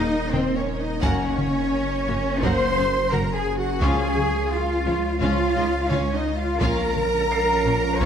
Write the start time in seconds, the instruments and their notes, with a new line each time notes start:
Already playing: sub bass D#1, ambient pad A#3 D#4 A#4 D#5, cello section D#4, french horn section D#4, violin section D#5, felt piano A#5
0.00 synth pluck A#3
0.33 double bass section D#2, viola section A#3 A#4, french horn section C4, cello section C4, synth pluck D#4, violin section C5 G5, taiko mid
0.56 french horn section C#4, cello section C#4, violin section C#5
0.79 french horn section D#4, cello section D#4, violin section D#5
1.03 sub bass F#1, double bass section F#2, synth pluck F#3, trombone section F#3 A#3, ambient pad F#3 C#4 F#4 A#4, viola section A#3 A#4, cello section C#4, french horn section C#4, violin section C#5 F#5, felt piano G#5, taiko
1.38 taiko mid
2.07 double bass section F#2, viola section A#3 F#4, synth pluck A#3, violin section C#5
2.42 double bass section F#2, trombone section F#3 A#3, synth pluck F#3, viola section A#3 A#4, cello section C5, french horn section C5, violin section F#5 C6, taiko
2.76 double bass section F#2, viola section A#3 G#4, synth pluck C#4, violin section F5
3.12 double bass section F#2, viola section A#3 A#4, synth pluck F#4, french horn section A#4, cello section A#4, violin section F#5 A#5, taiko mid
3.35 french horn section G#4, cello section G#4, violin section G#5
3.58 french horn section F#4, cello section F#4, violin section F#5
3.81 double bass section C#2, sub bass C#2, synth pluck C#3, trombone section F3 C#4, ambient pad G#3 C#5 F5, viola section C#4 F4, cello section G#4, french horn section G#4, violin section F5 G#5, felt piano C#6, taiko
4.17 taiko mid
4.52 cello section F4, french horn section F4, violin section F5
4.87 double bass section C#2, synth pluck F3, viola section C#4, violin section C#5
5.21 double bass section C#2, synth pluck C#3, trombone section F3 C#4, viola section C#4 F4, cello section F4, french horn section F4, violin section F5, taiko
5.56 double bass section C#2, synth pluck G#3, viola section C#4 D#4, violin section D#5
5.91 double bass section C#2, viola section C#4 F4, cello section C#4, synth pluck C#4, french horn section C#4, violin section C#5 F5, taiko mid
6.15 cello section D#4, french horn section D#4, violin section D#5
6.37 french horn section F4, cello section F4, violin section F5
6.61 double bass section A#1, sub bass A#1, ambient pad F3 C#4 A#4, trombone section F3 C#4, synth pluck A#3, viola section C#4 F4, cello section A#4, french horn section A#4, violin section F5 A#5, taiko
6.96 taiko mid
7.32 felt piano C7
7.66 double bass section A#1, viola section C#4, synth pluck C#4, violin section C#5
8.00 double bass section A#1, synth pluck A#3, viola section C#4 F4, french horn section C#5, cello section C#5, violin section F5 C#6, taiko